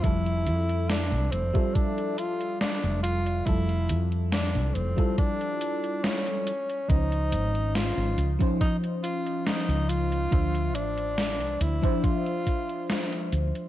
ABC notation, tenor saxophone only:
X:1
M:4/4
L:1/8
Q:1/4=70
K:F
V:1 name="Tenor saxophone"
E2 D C D F D F | E z D C D2 _D2 | _E2 F z E F E F- | F D2 E F3 z |]